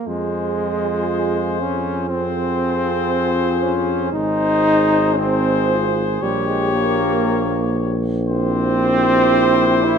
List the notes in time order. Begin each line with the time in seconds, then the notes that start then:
0.07 F2 G#3 F4 G#4 C5
1.60 C#4
2.09 C4 F4 G#4 C5
3.62 C#4
4.12 G#1 D#4 G#4 C5
5.16 C4 D#4 G#4 C5
5.69 F4
6.22 A#1 G3 G4 C#5
6.47 G#3
6.73 A#3
8.28 C4 E4 G4 C5
9.85 E4